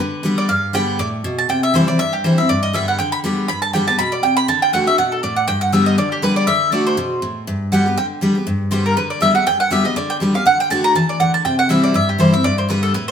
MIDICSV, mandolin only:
0, 0, Header, 1, 2, 480
1, 0, Start_track
1, 0, Key_signature, 1, "major"
1, 0, Tempo, 248963
1, 956, Time_signature, 4, 2, 24, 8
1, 25284, End_track
2, 0, Start_track
2, 0, Title_t, "Mandolin"
2, 0, Program_c, 0, 25
2, 0, Note_on_c, 0, 71, 58
2, 684, Note_off_c, 0, 71, 0
2, 729, Note_on_c, 0, 74, 85
2, 942, Note_on_c, 0, 77, 84
2, 944, Note_off_c, 0, 74, 0
2, 1395, Note_off_c, 0, 77, 0
2, 1439, Note_on_c, 0, 79, 97
2, 1885, Note_off_c, 0, 79, 0
2, 1919, Note_on_c, 0, 74, 85
2, 2077, Note_off_c, 0, 74, 0
2, 2670, Note_on_c, 0, 81, 91
2, 2877, Note_off_c, 0, 81, 0
2, 2885, Note_on_c, 0, 79, 93
2, 3138, Note_off_c, 0, 79, 0
2, 3147, Note_on_c, 0, 76, 91
2, 3357, Note_off_c, 0, 76, 0
2, 3377, Note_on_c, 0, 72, 78
2, 3616, Note_off_c, 0, 72, 0
2, 3624, Note_on_c, 0, 74, 85
2, 3835, Note_off_c, 0, 74, 0
2, 3837, Note_on_c, 0, 76, 105
2, 4096, Note_off_c, 0, 76, 0
2, 4104, Note_on_c, 0, 67, 65
2, 4316, Note_off_c, 0, 67, 0
2, 4325, Note_on_c, 0, 72, 72
2, 4580, Note_off_c, 0, 72, 0
2, 4588, Note_on_c, 0, 76, 83
2, 4799, Note_off_c, 0, 76, 0
2, 4804, Note_on_c, 0, 74, 90
2, 5058, Note_off_c, 0, 74, 0
2, 5066, Note_on_c, 0, 75, 93
2, 5278, Note_off_c, 0, 75, 0
2, 5290, Note_on_c, 0, 76, 77
2, 5544, Note_off_c, 0, 76, 0
2, 5553, Note_on_c, 0, 78, 80
2, 5749, Note_off_c, 0, 78, 0
2, 5757, Note_on_c, 0, 79, 91
2, 6011, Note_off_c, 0, 79, 0
2, 6019, Note_on_c, 0, 83, 100
2, 6153, Note_off_c, 0, 83, 0
2, 6717, Note_on_c, 0, 83, 92
2, 6971, Note_off_c, 0, 83, 0
2, 6978, Note_on_c, 0, 81, 98
2, 7192, Note_off_c, 0, 81, 0
2, 7200, Note_on_c, 0, 79, 77
2, 7460, Note_off_c, 0, 79, 0
2, 7472, Note_on_c, 0, 81, 93
2, 7676, Note_off_c, 0, 81, 0
2, 7683, Note_on_c, 0, 83, 110
2, 7942, Note_off_c, 0, 83, 0
2, 7944, Note_on_c, 0, 74, 77
2, 8155, Note_on_c, 0, 79, 83
2, 8159, Note_off_c, 0, 74, 0
2, 8410, Note_off_c, 0, 79, 0
2, 8418, Note_on_c, 0, 83, 113
2, 8637, Note_off_c, 0, 83, 0
2, 8653, Note_on_c, 0, 81, 96
2, 8905, Note_off_c, 0, 81, 0
2, 8913, Note_on_c, 0, 79, 92
2, 9120, Note_off_c, 0, 79, 0
2, 9128, Note_on_c, 0, 78, 80
2, 9385, Note_off_c, 0, 78, 0
2, 9396, Note_on_c, 0, 76, 91
2, 9598, Note_off_c, 0, 76, 0
2, 9606, Note_on_c, 0, 78, 91
2, 9865, Note_off_c, 0, 78, 0
2, 9871, Note_on_c, 0, 69, 60
2, 10076, Note_off_c, 0, 69, 0
2, 10084, Note_on_c, 0, 74, 76
2, 10342, Note_on_c, 0, 78, 76
2, 10344, Note_off_c, 0, 74, 0
2, 10549, Note_off_c, 0, 78, 0
2, 10557, Note_on_c, 0, 79, 108
2, 10812, Note_off_c, 0, 79, 0
2, 10819, Note_on_c, 0, 78, 91
2, 11038, Note_off_c, 0, 78, 0
2, 11048, Note_on_c, 0, 76, 76
2, 11302, Note_on_c, 0, 75, 86
2, 11306, Note_off_c, 0, 76, 0
2, 11520, Note_off_c, 0, 75, 0
2, 11536, Note_on_c, 0, 74, 83
2, 11790, Note_off_c, 0, 74, 0
2, 11799, Note_on_c, 0, 67, 62
2, 12008, Note_off_c, 0, 67, 0
2, 12012, Note_on_c, 0, 71, 86
2, 12258, Note_off_c, 0, 71, 0
2, 12266, Note_on_c, 0, 74, 87
2, 12475, Note_on_c, 0, 76, 104
2, 12482, Note_off_c, 0, 74, 0
2, 12930, Note_off_c, 0, 76, 0
2, 12965, Note_on_c, 0, 74, 69
2, 13225, Note_off_c, 0, 74, 0
2, 13239, Note_on_c, 0, 72, 86
2, 14337, Note_off_c, 0, 72, 0
2, 14888, Note_on_c, 0, 78, 71
2, 15336, Note_off_c, 0, 78, 0
2, 15377, Note_on_c, 0, 79, 86
2, 15533, Note_off_c, 0, 79, 0
2, 16801, Note_on_c, 0, 72, 70
2, 17061, Note_off_c, 0, 72, 0
2, 17078, Note_on_c, 0, 70, 75
2, 17285, Note_off_c, 0, 70, 0
2, 17293, Note_on_c, 0, 71, 69
2, 17542, Note_off_c, 0, 71, 0
2, 17550, Note_on_c, 0, 74, 79
2, 17762, Note_off_c, 0, 74, 0
2, 17775, Note_on_c, 0, 76, 84
2, 18016, Note_off_c, 0, 76, 0
2, 18023, Note_on_c, 0, 78, 86
2, 18238, Note_off_c, 0, 78, 0
2, 18255, Note_on_c, 0, 79, 110
2, 18502, Note_off_c, 0, 79, 0
2, 18509, Note_on_c, 0, 78, 92
2, 18720, Note_off_c, 0, 78, 0
2, 18742, Note_on_c, 0, 76, 80
2, 18990, Note_off_c, 0, 76, 0
2, 18992, Note_on_c, 0, 75, 84
2, 19201, Note_off_c, 0, 75, 0
2, 19217, Note_on_c, 0, 74, 86
2, 19467, Note_off_c, 0, 74, 0
2, 19471, Note_on_c, 0, 79, 96
2, 19601, Note_off_c, 0, 79, 0
2, 19955, Note_on_c, 0, 77, 86
2, 20162, Note_off_c, 0, 77, 0
2, 20176, Note_on_c, 0, 78, 96
2, 20425, Note_off_c, 0, 78, 0
2, 20440, Note_on_c, 0, 79, 100
2, 20637, Note_off_c, 0, 79, 0
2, 20645, Note_on_c, 0, 81, 88
2, 20896, Note_off_c, 0, 81, 0
2, 20904, Note_on_c, 0, 82, 106
2, 21115, Note_off_c, 0, 82, 0
2, 21130, Note_on_c, 0, 81, 92
2, 21381, Note_off_c, 0, 81, 0
2, 21387, Note_on_c, 0, 74, 74
2, 21591, Note_on_c, 0, 78, 80
2, 21595, Note_off_c, 0, 74, 0
2, 21850, Note_off_c, 0, 78, 0
2, 21864, Note_on_c, 0, 81, 94
2, 22065, Note_off_c, 0, 81, 0
2, 22073, Note_on_c, 0, 79, 90
2, 22331, Note_off_c, 0, 79, 0
2, 22343, Note_on_c, 0, 78, 95
2, 22552, Note_off_c, 0, 78, 0
2, 22565, Note_on_c, 0, 76, 73
2, 22816, Note_off_c, 0, 76, 0
2, 22819, Note_on_c, 0, 74, 82
2, 23030, Note_off_c, 0, 74, 0
2, 23048, Note_on_c, 0, 76, 87
2, 23297, Note_off_c, 0, 76, 0
2, 23310, Note_on_c, 0, 67, 59
2, 23514, Note_off_c, 0, 67, 0
2, 23522, Note_on_c, 0, 72, 88
2, 23773, Note_off_c, 0, 72, 0
2, 23782, Note_on_c, 0, 76, 92
2, 23989, Note_on_c, 0, 74, 97
2, 23990, Note_off_c, 0, 76, 0
2, 24246, Note_off_c, 0, 74, 0
2, 24258, Note_on_c, 0, 72, 77
2, 24467, Note_off_c, 0, 72, 0
2, 24483, Note_on_c, 0, 71, 76
2, 24723, Note_off_c, 0, 71, 0
2, 24731, Note_on_c, 0, 69, 84
2, 24943, Note_off_c, 0, 69, 0
2, 24964, Note_on_c, 0, 71, 73
2, 25212, Note_off_c, 0, 71, 0
2, 25220, Note_on_c, 0, 72, 89
2, 25284, Note_off_c, 0, 72, 0
2, 25284, End_track
0, 0, End_of_file